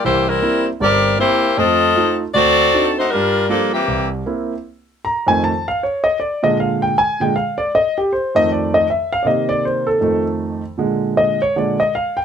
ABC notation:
X:1
M:4/4
L:1/8
Q:"Swing" 1/4=157
K:Fmix
V:1 name="Saxophone section"
[B,=EGc] [G,CEB]2 z [CGBd]2 [B,EGc]2 | [CFAe]3 z [C^FAd]3 [A,EFc] | [G,DFB]2 [F,B,DA] [=E,B,CG]2 z3 | z8 |
z8 | z8 | z8 | z8 |]
V:2 name="Grand piano"
z8 | z8 | z8 | z2 b _a =a f _d e |
d e f g _a g f d | e G c e d e =e f | [de] d c A2 z3 | z2 e _d =d e f g |]
V:3 name="Grand piano" clef=bass
[C,,=E,]2 [B,C=E] z [G,,,G,,]2 [B,CE] z | [F,,A,]2 [A,EF] z D,,2 [CDE^F] z | G,,2 [G,B,F] z C,,2 [B,C=E] z | z3 [F,,E,A,] z4 |
z [B,,D,_A,]3 z [B,,D,A,] z2 | z3 [F,,E,A,]3 z2 | [C,E,B,]4 [F,,E,A,]3 z | [B,,D,_A,]3 z [B,,D,A,] z3 |]